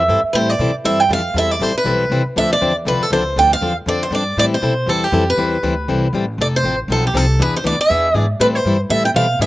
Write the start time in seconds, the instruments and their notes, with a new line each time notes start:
Already playing: steel-string acoustic guitar E5
0.08 upright bass G2, steel-string acoustic guitar E3 G3 C4 E4 A4
0.23 muted upright bass stroke
0.33 upright bass A2, steel-string acoustic guitar E3 G3 C4 E4 A4 B4 C5
0.50 steel-string acoustic guitar D5
0.59 upright bass B2, steel-string acoustic guitar E3 G3 C4 E4 A4
0.84 upright bass G2, steel-string acoustic guitar E3 G3 C4 E4 A4 E5
1.00 steel-string acoustic guitar G5
1.09 upright bass F2, steel-string acoustic guitar E3 G3 C4 E4 A4
1.13 steel-string acoustic guitar F5
1.34 upright bass E2, steel-string acoustic guitar E3 G3 C4 E4 A4
1.38 steel-string acoustic guitar E5
1.51 steel-string acoustic guitar D5
1.59 upright bass A1, steel-string acoustic guitar E3 G3 C4 E4 A4 C5
1.74 steel-string acoustic guitar B4, muted upright bass stroke
1.84 upright bass B1, steel-string acoustic guitar E3 G3 C4 E4 A4
2.10 upright bass C2, steel-string acoustic guitar E3 G3 C4 E4 A4
2.36 upright bass D2, steel-string acoustic guitar D3 F3 C4 D4 A4 E5
2.53 steel-string acoustic guitar D5
2.61 upright bass E2, steel-string acoustic guitar D3 F3 C4 D4 A4
2.85 upright bass C2, steel-string acoustic guitar D3 F3 C4 D4 A4 B4
3.00 steel-string acoustic guitar A4, muted upright bass stroke
3.10 upright bass C#2, steel-string acoustic guitar D3 F3 C4 D4 A4 C5
3.36 upright bass D2, steel-string acoustic guitar D3 F3 C4 D4 A4 G5
3.53 steel-string acoustic guitar F5
3.61 upright bass E2, steel-string acoustic guitar D3 F3 C4 D4 A4
3.86 upright bass F2, steel-string acoustic guitar D3 F3 C4 D4 A4 D5
4.03 steel-string acoustic guitar C5
4.10 upright bass G2, steel-string acoustic guitar D3 F3 C4 D4 A4
4.15 steel-string acoustic guitar D5
4.37 upright bass A2, steel-string acoustic guitar E3 G3 C4 E4 A4 D5
4.54 steel-string acoustic guitar C5
4.62 upright bass B2, steel-string acoustic guitar E3 G3 C4 E4 A4
4.86 upright bass E2, steel-string acoustic guitar E3 G3 C4 E4 A4
5.04 steel-string acoustic guitar G4
5.12 upright bass F2, steel-string acoustic guitar E3 G3 C4 E4 A4
5.30 steel-string acoustic guitar B4
5.38 upright bass E2, steel-string acoustic guitar E3 G3 C4 E4 A4
5.63 upright bass D2, steel-string acoustic guitar E3 G3 C4 E4 A4
5.88 upright bass C2, steel-string acoustic guitar E3 G3 C4 E4 A4
6.13 upright bass A1, steel-string acoustic guitar E3 G3 C4 E4 A4
6.38 upright bass F1, steel-string acoustic guitar F3 C4 D#4 A4 D5
6.56 steel-string acoustic guitar C5
6.63 upright bass A1, steel-string acoustic guitar F3 C4 D#4 A4
6.88 upright bass B1, steel-string acoustic guitar F3 C4 D#4 A4
7.07 steel-string acoustic guitar G4
7.14 upright bass C2, steel-string acoustic guitar F3 C4 D#4 A4
7.39 upright bass E2, steel-string acoustic guitar E3 B3 D4 G#4 B4
7.56 steel-string acoustic guitar C5
7.64 upright bass D2, steel-string acoustic guitar E3 B3 D4 G#4 D5
7.79 steel-string acoustic guitar E5, muted upright bass stroke
7.90 upright bass E2, steel-string acoustic guitar E3 B3 D4 G#4
8.14 upright bass G#2, steel-string acoustic guitar E3 B3 D4 G#4
8.40 upright bass A2, steel-string acoustic guitar E3 G3 C4 E4 A4 B4
8.55 steel-string acoustic guitar C5
8.65 upright bass G2, steel-string acoustic guitar E3 G3 C4 E4 A4
8.89 upright bass A2, steel-string acoustic guitar E3 G3 C4 E4 A4 E5
9.05 steel-string acoustic guitar G5
9.14 upright bass B2, steel-string acoustic guitar E3 G3 C4 E4 A4 F5
9.39 upright bass G#2, steel-string acoustic guitar E3 B3 D4 G#4 E5